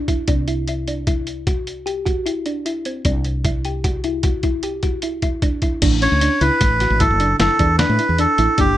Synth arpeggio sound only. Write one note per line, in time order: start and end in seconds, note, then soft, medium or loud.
0.08 0.25 E4 medium
0.28 0.44 D4 medium
0.48 0.64 E4 medium
0.69 0.84 E4 medium
0.88 1.04 D4 medium
1.07 1.40 E4 medium
1.47 1.80 F#4 medium
1.86 2.02 G4 medium
2.06 2.22 F#4 medium
2.26 2.42 E4 medium
2.46 2.62 D4 medium
2.66 2.82 E4 medium
2.86 3.02 C4 medium
3.05 3.38 D4 medium
3.45 3.61 E4 medium
3.65 3.81 G4 medium
3.84 4.01 F#4 medium
4.04 4.21 E4 medium
4.24 4.40 F#4 medium
4.44 4.60 E4 medium
4.63 4.80 G4 medium
4.83 4.99 F#4 medium
5.03 5.19 E4 medium
5.23 5.39 E4 medium
5.43 5.59 D4 medium
5.63 5.79 E4 medium
5.82 5.98 D4 medium
6.02 6.18 C#4 medium
6.22 6.38 D4 medium
6.41 6.74 E4 medium
6.81 6.97 F#4 medium
7.01 7.17 E4 medium
7.20 7.37 D4 medium
7.40 7.56 E4 medium
7.60 7.76 D4 medium
7.80 7.96 D4 medium
7.99 8.15 E4 medium
8.19 8.35 D4 medium
8.39 8.55 E4 medium
8.58 8.75 D4 medium